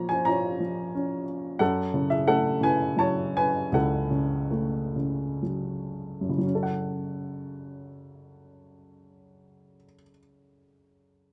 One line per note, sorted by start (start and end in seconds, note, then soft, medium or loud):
0.00 1.57 A#2 medium
0.00 0.59 F3 soft
0.00 0.28 C#5 medium
0.00 0.25 A#5 medium
0.09 0.27 C5 medium
0.09 0.27 G#5 medium
0.25 1.56 F4 soft
0.25 1.23 C#5 medium
0.25 1.22 A#5 medium
0.60 1.57 F3 soft
0.95 1.59 C#4 medium
1.59 3.69 F#2 medium
1.59 2.08 A4 medium
1.59 2.12 F#5 medium
1.94 2.59 C#3 soft
2.10 2.27 G#4 medium
2.10 2.28 E5 medium
2.27 3.69 A3 soft
2.27 2.60 A4 medium
2.27 2.63 F#5 medium
2.61 4.08 C#3 soft
2.61 2.97 B4 medium
2.61 3.00 G#5 medium
2.97 4.48 F#3 soft
2.97 3.33 C#5 medium
2.97 3.37 A5 medium
3.37 3.71 B4 medium
3.37 3.75 G#5 medium
3.72 6.39 C#2 medium
3.72 5.41 A4 medium
3.72 5.40 F#5 medium
4.11 4.94 C#3 soft
4.51 6.38 A3 soft
4.96 6.28 C#3 soft
5.42 6.37 F#3 soft
6.21 9.76 F#2 soft
6.29 9.84 C#3 soft
6.38 9.93 F#3 soft
6.47 10.01 C#4 soft
6.55 10.10 A4 soft
6.63 10.17 F#5 medium